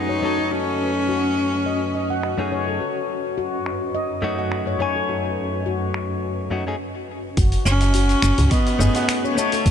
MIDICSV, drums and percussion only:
0, 0, Header, 1, 3, 480
1, 0, Start_track
1, 0, Tempo, 571429
1, 436, Time_signature, 4, 2, 24, 8
1, 8155, End_track
2, 0, Start_track
2, 0, Title_t, "Darbuka"
2, 6558, Note_on_c, 9, 62, 69
2, 6642, Note_off_c, 9, 62, 0
2, 6923, Note_on_c, 9, 62, 39
2, 7007, Note_off_c, 9, 62, 0
2, 7043, Note_on_c, 9, 64, 88
2, 7127, Note_off_c, 9, 64, 0
2, 7278, Note_on_c, 9, 63, 66
2, 7362, Note_off_c, 9, 63, 0
2, 7392, Note_on_c, 9, 64, 76
2, 7476, Note_off_c, 9, 64, 0
2, 7521, Note_on_c, 9, 62, 66
2, 7525, Note_on_c, 9, 63, 72
2, 7605, Note_off_c, 9, 62, 0
2, 7609, Note_off_c, 9, 63, 0
2, 8155, End_track
3, 0, Start_track
3, 0, Title_t, "Drums"
3, 1877, Note_on_c, 9, 26, 68
3, 1961, Note_off_c, 9, 26, 0
3, 3077, Note_on_c, 9, 26, 64
3, 3161, Note_off_c, 9, 26, 0
3, 3794, Note_on_c, 9, 26, 71
3, 3878, Note_off_c, 9, 26, 0
3, 4992, Note_on_c, 9, 26, 66
3, 5076, Note_off_c, 9, 26, 0
3, 6192, Note_on_c, 9, 46, 59
3, 6194, Note_on_c, 9, 36, 111
3, 6201, Note_on_c, 9, 82, 47
3, 6276, Note_off_c, 9, 46, 0
3, 6278, Note_off_c, 9, 36, 0
3, 6285, Note_off_c, 9, 82, 0
3, 6317, Note_on_c, 9, 46, 34
3, 6325, Note_on_c, 9, 82, 22
3, 6401, Note_off_c, 9, 46, 0
3, 6409, Note_off_c, 9, 82, 0
3, 6437, Note_on_c, 9, 82, 75
3, 6521, Note_off_c, 9, 82, 0
3, 6558, Note_on_c, 9, 46, 47
3, 6567, Note_on_c, 9, 82, 35
3, 6642, Note_off_c, 9, 46, 0
3, 6651, Note_off_c, 9, 82, 0
3, 6668, Note_on_c, 9, 46, 61
3, 6676, Note_on_c, 9, 82, 46
3, 6752, Note_off_c, 9, 46, 0
3, 6760, Note_off_c, 9, 82, 0
3, 6798, Note_on_c, 9, 46, 32
3, 6806, Note_on_c, 9, 82, 23
3, 6882, Note_off_c, 9, 46, 0
3, 6890, Note_off_c, 9, 82, 0
3, 6908, Note_on_c, 9, 26, 80
3, 6916, Note_on_c, 9, 82, 77
3, 6992, Note_off_c, 9, 26, 0
3, 7000, Note_off_c, 9, 82, 0
3, 7039, Note_on_c, 9, 46, 45
3, 7047, Note_on_c, 9, 82, 30
3, 7123, Note_off_c, 9, 46, 0
3, 7131, Note_off_c, 9, 82, 0
3, 7148, Note_on_c, 9, 46, 59
3, 7153, Note_on_c, 9, 36, 102
3, 7156, Note_on_c, 9, 82, 45
3, 7232, Note_off_c, 9, 46, 0
3, 7237, Note_off_c, 9, 36, 0
3, 7240, Note_off_c, 9, 82, 0
3, 7279, Note_on_c, 9, 46, 34
3, 7288, Note_on_c, 9, 82, 23
3, 7363, Note_off_c, 9, 46, 0
3, 7372, Note_off_c, 9, 82, 0
3, 7398, Note_on_c, 9, 82, 81
3, 7482, Note_off_c, 9, 82, 0
3, 7516, Note_on_c, 9, 46, 46
3, 7524, Note_on_c, 9, 82, 32
3, 7600, Note_off_c, 9, 46, 0
3, 7608, Note_off_c, 9, 82, 0
3, 7633, Note_on_c, 9, 26, 76
3, 7633, Note_on_c, 9, 46, 59
3, 7641, Note_on_c, 9, 82, 43
3, 7717, Note_off_c, 9, 26, 0
3, 7717, Note_off_c, 9, 46, 0
3, 7725, Note_off_c, 9, 82, 0
3, 7769, Note_on_c, 9, 82, 22
3, 7853, Note_off_c, 9, 82, 0
3, 7877, Note_on_c, 9, 82, 71
3, 7961, Note_off_c, 9, 82, 0
3, 7999, Note_on_c, 9, 46, 47
3, 8008, Note_on_c, 9, 82, 33
3, 8083, Note_off_c, 9, 46, 0
3, 8092, Note_off_c, 9, 82, 0
3, 8113, Note_on_c, 9, 36, 118
3, 8113, Note_on_c, 9, 46, 55
3, 8121, Note_on_c, 9, 82, 45
3, 8155, Note_off_c, 9, 36, 0
3, 8155, Note_off_c, 9, 46, 0
3, 8155, Note_off_c, 9, 82, 0
3, 8155, End_track
0, 0, End_of_file